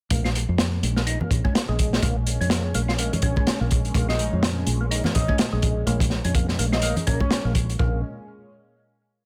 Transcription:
0.10 fingered electric bass A#1, analog synth pad A#2 G#3 C#4, tonewheel organ A#3, kick, closed hi-hat, high conga
0.25 tonewheel organ F4, snare
0.35 closed hi-hat
0.49 fingered electric bass F2
0.58 snare, closed hi-hat
0.83 fingered electric bass A#1, closed hi-hat, high conga
0.96 tonewheel organ A#3, snare
1.07 tonewheel organ D#4, closed hi-hat
1.21 tonewheel organ A#3, low conga
1.31 fingered electric bass A#1, kick, closed hi-hat
1.45 tonewheel organ C#4, kick, high conga
1.55 tonewheel organ A#3, snare, closed hi-hat
1.69 fingered electric bass A#1, tonewheel organ G#3
1.79 kick, closed hi-hat
1.93 snare
2.02 fingered electric bass A#1, tonewheel organ A#3, kick, closed hi-hat, high conga
2.27 closed hi-hat
2.41 fingered electric bass F2, tonewheel organ C#4, closed hi-hat
2.50 tonewheel organ A#3, snare, closed hi-hat
2.74 fingered electric bass A#1, tonewheel organ A#3, closed hi-hat, high conga
2.89 tonewheel organ F4, snare
2.98 tonewheel organ A#3, closed hi-hat
3.13 closed hi-hat, low conga
3.22 fingered electric bass A#1, tonewheel organ C#4, kick, closed hi-hat
3.36 tonewheel organ C#4, kick, high conga
3.47 snare, closed hi-hat
3.61 fingered electric bass A#1, tonewheel organ A#3
3.71 kick, closed hi-hat
3.85 closed hi-hat
3.94 fingered electric bass A#1, tonewheel organ A#3, kick, closed hi-hat, high conga
4.09 tonewheel organ F4, digital synth lead D#5, snare
4.19 closed hi-hat
4.33 fingered electric bass F2
4.43 snare, closed hi-hat
4.67 fingered electric bass A#1, closed hi-hat, high conga
4.81 tonewheel organ A#3
4.91 tonewheel organ D#4, closed hi-hat
5.04 tonewheel organ A#3, snare, low conga
5.15 fingered electric bass A#1, digital synth lead D#5, kick, closed hi-hat
5.28 tonewheel organ C#4, kick, high conga
5.38 tonewheel organ A#3, snare, closed hi-hat
5.53 fingered electric bass A#1, tonewheel organ G#3
5.62 kick, closed hi-hat
5.87 fingered electric bass A#1, tonewheel organ A#3, closed hi-hat, high conga
6.00 kick, closed hi-hat
6.10 snare
6.24 fingered electric bass F2, tonewheel organ C#4, closed hi-hat
6.35 tonewheel organ A#3, kick, closed hi-hat
6.49 snare
6.59 fingered electric bass A#1, tonewheel organ A#3, closed hi-hat, high conga
6.72 tonewheel organ F4, digital synth lead D#5, snare
6.82 tonewheel organ A#3, digital synth lead D#5, closed hi-hat
6.96 closed hi-hat, low conga
7.07 fingered electric bass A#1, tonewheel organ C#4, digital synth lead A#4, kick, closed hi-hat
7.20 tonewheel organ C#4, digital synth lead C#5, kick, high conga
7.31 digital synth lead C#5, snare, closed hi-hat
7.45 fingered electric bass A#1, tonewheel organ A#3
7.55 kick, closed hi-hat
7.70 closed hi-hat
7.79 fingered electric bass A#1, tonewheel organ A#3, kick

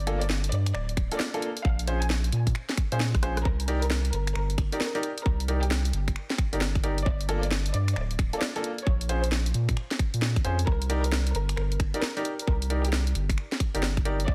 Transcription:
Already playing: sub bass G1
0.07 grand piano A#3 D4 F4 A4, closed hi-hat
0.21 violin section D5, closed hi-hat
0.30 snare
0.44 closed hi-hat
0.52 sub bass G2, violin section D5, closed hi-hat
0.66 finger snap, closed hi-hat
0.74 sub bass D1, violin section D5, finger snap
0.89 closed hi-hat
0.97 sub bass D1, finger snap, kick, closed hi-hat
1.12 grand piano A#3 D4 F4 A4, closed hi-hat
1.20 violin section D5, snare
1.34 grand piano A#3 D4 F4 A4, closed hi-hat
1.42 closed hi-hat
1.57 closed hi-hat
1.65 sub bass A#1, violin section F5, kick
1.79 closed hi-hat
1.87 grand piano C#4 F4 G#4 C5, closed hi-hat
2.02 violin section G#5, closed hi-hat
2.10 snare
2.24 closed hi-hat
2.32 sub bass A#2, closed hi-hat
2.47 kick, closed hi-hat
2.55 finger snap
2.69 snare, closed hi-hat
2.78 finger snap, kick, closed hi-hat
2.92 sub bass A#2, grand piano C#4 F4 G#4 C5, closed hi-hat
3.00 snare
3.15 sub bass A#1, kick, cross-stick, closed hi-hat
3.23 grand piano C#4 F4 G#4 C5, cross-stick, closed hi-hat
3.37 cross-stick, closed hi-hat
3.45 sub bass C2, violin section A#4, kick
3.60 closed hi-hat
3.68 grand piano D#4 G4 A#4 D5, closed hi-hat
3.82 violin section A#4, closed hi-hat
3.90 snare
4.05 closed hi-hat
4.13 sub bass G1, violin section A#4, closed hi-hat
4.27 finger snap, closed hi-hat
4.35 sub bass G1, violin section A#4, finger snap
4.50 closed hi-hat
4.58 sub bass G1, finger snap, kick, closed hi-hat
4.72 grand piano D#4 G4 A#4 D5, closed hi-hat
4.81 violin section A#4, snare
4.95 grand piano D#4 G4 A#4 D5, closed hi-hat
5.03 closed hi-hat
5.18 closed hi-hat
5.26 sub bass C2, violin section A#4, kick
5.40 closed hi-hat
5.48 grand piano D#4 G4 A#4 D5, closed hi-hat
5.63 violin section G4, closed hi-hat
5.71 snare
5.85 closed hi-hat
5.93 sub bass G1, closed hi-hat
6.08 finger snap, kick, closed hi-hat
6.16 finger snap
6.30 snare, closed hi-hat
6.38 finger snap, kick, closed hi-hat
6.53 sub bass G1, grand piano D#4 G4 A#4 D5, closed hi-hat
6.61 snare
6.75 sub bass G1, kick, closed hi-hat
6.84 sub bass G1, grand piano D#4 G4 A#4 D5, closed hi-hat
6.98 closed hi-hat
7.06 sub bass G1, violin section D5, kick
7.21 closed hi-hat
7.29 grand piano A#3 D4 F4 A4, closed hi-hat
7.43 violin section D5, closed hi-hat
7.51 snare
7.66 closed hi-hat
7.74 sub bass G2, violin section D5, closed hi-hat
7.88 finger snap, closed hi-hat
7.96 sub bass D1, violin section D5, finger snap
8.11 closed hi-hat
8.19 sub bass D1, finger snap, kick, closed hi-hat
8.33 grand piano A#3 D4 F4 A4, closed hi-hat
8.41 violin section D5, snare
8.56 grand piano A#3 D4 F4 A4, closed hi-hat
8.64 closed hi-hat
8.78 closed hi-hat
8.87 sub bass A#1, violin section C#5, kick
9.01 closed hi-hat
9.09 grand piano C#4 F4 G#4 C5, closed hi-hat
9.24 violin section C5, closed hi-hat
9.32 snare
9.46 closed hi-hat
9.54 sub bass A#2, closed hi-hat
9.69 finger snap, kick, closed hi-hat
9.77 finger snap
9.91 snare, closed hi-hat
9.99 finger snap, kick, closed hi-hat
10.14 sub bass A#2, closed hi-hat
10.22 snare
10.36 sub bass F1, kick, closed hi-hat
10.45 sub bass F2, grand piano C#4 F4 G#4 C5, closed hi-hat
10.59 closed hi-hat
10.67 sub bass C2, violin section A#4, kick
10.82 closed hi-hat
10.90 grand piano D#4 G4 A#4 D5, closed hi-hat
11.04 violin section A#4, closed hi-hat
11.12 snare
11.27 closed hi-hat
11.35 sub bass G1, violin section A#4, closed hi-hat
11.49 finger snap, closed hi-hat
11.57 sub bass G1, violin section A#4, finger snap
11.72 closed hi-hat
11.80 sub bass G1, finger snap, kick, closed hi-hat
11.94 grand piano D#4 G4 A#4 D5, closed hi-hat
12.02 violin section A#4, snare
12.17 grand piano D#4 G4 A#4 D5, closed hi-hat
12.25 closed hi-hat
12.39 closed hi-hat
12.47 sub bass C2, violin section A#4, kick
12.62 closed hi-hat
12.70 grand piano D#4 G4 A#4 D5, closed hi-hat
12.84 violin section G4, closed hi-hat
12.93 snare
13.07 closed hi-hat
13.15 sub bass G1, closed hi-hat
13.29 finger snap, kick, closed hi-hat
13.38 finger snap
13.52 snare, closed hi-hat
13.60 finger snap, kick, closed hi-hat
13.74 sub bass G1, grand piano D#4 G4 A#4 D5, closed hi-hat
13.83 snare
13.97 sub bass G1, kick, closed hi-hat
14.05 sub bass G1, grand piano D#4 G4 A#4 D5, closed hi-hat
14.20 closed hi-hat
14.28 sub bass G1, violin section D5, kick

